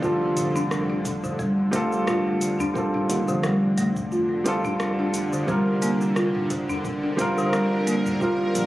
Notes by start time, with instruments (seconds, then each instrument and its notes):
Already playing: synth drone D3 G3 C4 F4 A4
0.01 fretless electric bass F1, felt piano G3 C4 F4 A4, marimba F4, kick, cabasa
0.37 marimba D3, closed hi-hat, mid tom, cabasa
0.56 marimba D4, cabasa
0.71 cross-stick, cabasa
0.90 marimba D4
1.05 kick, closed hi-hat, cabasa
1.23 marimba D3, mid tom, udu, cabasa
1.39 marimba G3, kick, cabasa
1.71 felt piano G3 C4 F4, marimba A3, kick, closed hi-hat, cabasa
1.75 felt piano A4
1.92 cabasa
2.07 marimba F4, cross-stick, mid tom, cabasa
2.41 marimba D3, closed hi-hat, cabasa
2.59 marimba D4, udu, cabasa
2.74 felt piano G3 C4 F4 A4, kick, cabasa
2.94 marimba D4, mid tom
3.10 fretless electric bass D#2, closed hi-hat, cabasa
3.28 fretless electric bass F1, marimba D3, cabasa
3.43 marimba G3, cross-stick, cabasa
3.78 marimba A3, closed hi-hat, mid tom, cabasa
3.96 kick, udu, cabasa
4.11 marimba F4, udu, cabasa
4.44 marimba D3, felt piano G3 C4 F4 A4, closed hi-hat, cabasa
4.64 marimba D4, kick, mid tom, cabasa
4.80 cross-stick, cabasa
4.99 marimba D4
5.14 closed hi-hat, cabasa
5.33 marimba D3, cabasa
5.47 fretless electric bass C2, felt piano G3 C4 F4, marimba G3, kick, mid tom, cabasa
5.51 felt piano A#4
5.68 synth drone C4
5.82 marimba A#3, closed hi-hat, cabasa
5.91 synth drone G3
6.01 cabasa
6.16 marimba F4, cross-stick, cabasa
6.28 synth drone F4
6.35 mid tom
6.40 synth drone A#4
6.50 marimba D3, kick, closed hi-hat, cabasa
6.68 marimba D4, udu, cabasa
6.85 kick, cabasa
7.04 marimba D4
7.17 felt piano G3 C4 F4, kick, closed hi-hat, mid tom, cabasa
7.21 felt piano A#4
7.38 marimba D3, cabasa
7.53 marimba G3, cross-stick, cabasa
7.87 marimba A#3, closed hi-hat, cabasa
8.06 mid tom, udu, cabasa
8.20 felt piano G3 C4 F4 A#4, marimba F4, kick, cabasa
8.55 fretless electric bass A#1, marimba D3, closed hi-hat, cabasa